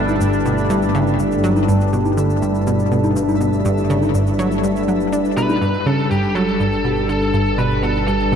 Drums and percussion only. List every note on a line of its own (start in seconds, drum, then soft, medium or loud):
0.09 low bongo medium
0.09 shaker soft
0.21 shaker medium
0.33 shaker soft
0.46 shaker medium
0.58 shaker soft
0.70 shaker medium
0.82 shaker soft
0.95 shaker soft
1.07 shaker soft
1.19 shaker medium
1.32 shaker soft
1.44 shaker medium
1.56 low bongo medium
1.56 shaker soft
1.69 shaker medium
1.81 shaker soft
1.93 shaker medium
2.05 low bongo medium
2.05 shaker soft
2.18 shaker medium
2.30 shaker soft
2.42 shaker medium
2.55 shaker soft
2.67 shaker medium
2.79 shaker soft
2.92 shaker soft
3.04 low bongo medium
3.04 shaker soft
3.16 shaker medium
3.29 low bongo medium
3.29 shaker soft
3.41 shaker medium
3.53 shaker soft
3.65 shaker medium
3.78 shaker soft
3.90 shaker medium
4.02 low bongo medium
4.02 shaker soft
4.15 shaker medium
4.27 shaker soft
4.39 shaker medium
4.51 shaker soft
4.64 shaker medium
4.76 shaker soft
4.88 shaker soft
5.01 shaker soft
5.13 shaker medium
5.25 shaker soft
5.37 shaker medium
5.50 low bongo medium
5.50 shaker soft
5.62 shaker medium
5.74 shaker soft
5.87 shaker medium
5.99 low bongo medium
5.99 shaker soft
6.11 shaker medium
6.23 shaker soft
6.36 shaker medium
6.48 shaker soft
6.60 shaker medium
6.72 shaker soft
6.85 shaker soft
6.97 low bongo medium
6.97 shaker soft
7.09 shaker medium
7.21 low bongo medium
7.21 shaker soft
7.34 shaker medium
7.46 shaker soft
7.59 shaker medium
7.71 shaker soft
7.83 shaker medium
7.95 low bongo medium
7.95 shaker soft
8.08 shaker medium
8.20 shaker soft
8.32 shaker medium